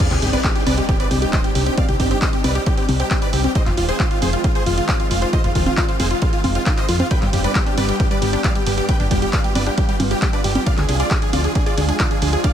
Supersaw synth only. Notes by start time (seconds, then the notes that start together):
0.11 G4
0.22 G4
0.33 B4 D5
0.44 G4
0.55 G4
0.67 B4 D5
0.78 G4
0.89 G4
1.00 B4 D5
1.11 G4
1.22 G4
1.33 C5 D#5
1.44 G4
1.55 G4
1.66 G4
1.78 D5 F5
1.89 G4
2.00 G4
2.11 G4
2.22 C5 D#5
2.33 G4
2.44 B4 D5
2.55 G4
2.67 G4
2.78 G4
3.00 G4
3.11 G4
3.22 B4 D5
3.33 G4
3.44 G4
3.56 C5 D#5
3.67 F4
3.78 F4
3.89 G#4 C5
4.00 F4
4.11 F4
4.22 G#4 C5
4.33 F4
4.44 F4
4.56 G#4 C5
4.67 F4
4.78 F4
4.89 F4 D5
5.00 F4
5.11 F4
5.22 F4
5.33 C5 D#5
5.44 F4
5.55 F4
5.66 F4
5.78 F4 D5
5.89 F4
6.00 G#4 C5
6.11 F4
6.22 F4
6.33 F4
6.55 F4
6.66 F4
6.78 C5 D#5
6.89 F4
7.00 F4
7.11 B4 G5
7.22 G4
7.33 G4
7.44 B4 D5
7.55 G4
7.66 G4
7.78 B4 D5
7.89 G4
8.00 G4
8.11 B4 D5
8.22 G4
8.33 G4
8.44 D5 F5
8.56 G4
8.67 G4
8.78 G4
8.89 B4 G5
9.00 G4
9.11 G4
9.22 G4
9.33 D5 F5
9.44 G4
9.55 B4 D5
9.67 G4
9.78 G4
9.89 G4
10.11 G4
10.22 G4
10.33 B4 D5
10.44 G4
10.55 G4
10.66 D5 F5
10.78 G#4
10.89 G#4
11.00 F4 D5
11.11 G#4
11.22 G#4
11.33 F4 D5
11.44 G#4
11.55 G#4
11.66 F4 D5
11.77 G#4
11.89 G#4
11.99 F4 D5
12.11 G#4
12.22 G#4
12.33 G#4
12.44 D5 F5